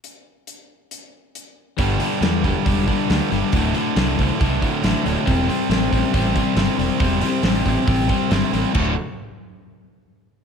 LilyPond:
<<
  \new Staff \with { instrumentName = "Distorted electric guitar" } { \clef bass \time 4/4 \key g \major \tempo 4 = 138 r1 | <g, d g>8 <g, d g>8 <g, d g>8 <g, d g>8 <g, d g>8 <g, d g>8 <g, d g>8 <g, d g>8 | <d, a, d>8 <d, a, d>8 <d, a, d>8 <d, a, d>8 <d, a, d>8 <d, a, d>8 <d, a, d>8 <d, a, d>8 | <c g c'>8 <c g c'>8 <c g c'>8 <c g c'>8 <c g c'>8 <c g c'>8 <c g c'>8 <c g c'>8 |
<c g c'>8 <c g c'>8 <c g c'>8 <c g c'>8 <c g c'>8 <c g c'>8 <c g c'>8 <c g c'>8 | <d, a, d a fis'>8 r2. r8 | }
  \new Staff \with { instrumentName = "Overdriven electric guitar" } { \clef bass \time 4/4 \key g \major r1 | <g, d g>8 <g, d g>8 <g, d g>8 <g, d g>8 <g, d g>8 <g, d g>8 <g, d g>8 <g, d g>8 | <d, a, d>8 <d, a, d>8 <d, a, d>8 <d, a, d>8 <d, a, d>8 <d, a, d>8 <d, a, d>8 <d, a, d>8 | <c g c'>8 <c g c'>8 <c g c'>8 <c g c'>8 <c g c'>8 <c g c'>8 <c g c'>8 <c g c'>8 |
<c g c'>8 <c g c'>8 <c g c'>8 <c g c'>8 <c g c'>8 <c g c'>8 <c g c'>8 <c g c'>8 | <d, a, d a fis'>8 r2. r8 | }
  \new Staff \with { instrumentName = "Fingered electric bass" } { \clef bass \time 4/4 \key g \major r1 | g,,8 r8 e,8 e,,16 r16 e,,8 r8 d,16 r16 g,,16 r16 | d,,8 r8 c,8 c,16 r16 c,8 r8 a,,16 r16 d,,16 r16 | e,,8 r8 a,,8 a,,16 r16 a,,8 r8 g,,16 r16 e,,16 r16 |
e,,8 r8 a,,8 a,,16 r16 a,,8 r8 g,,16 r16 a,,16 r16 | d,,8 r2. r8 | }
  \new DrumStaff \with { instrumentName = "Drums" } \drummode { \time 4/4 hh4 hh4 hh4 hh4 | <hho bd>8 hho8 <hho sn>8 <hho bd>8 <hho bd>8 <hho bd>8 <hho sn>8 <hho sn>8 | <hho bd>8 hho8 <hho sn>8 <hho bd>8 <hho bd>8 <hho bd>8 <hho sn>8 <hho sn>8 | <hho bd>8 hho8 <hho sn>8 <hho bd>8 <hho bd>8 <hho bd>8 <hho sn>8 hho8 |
<hho bd>8 hho8 <hho sn>8 <hho bd>8 <hho bd>8 <hho bd>8 <hho sn>8 hho8 | <cymc bd>4 r4 r4 r4 | }
>>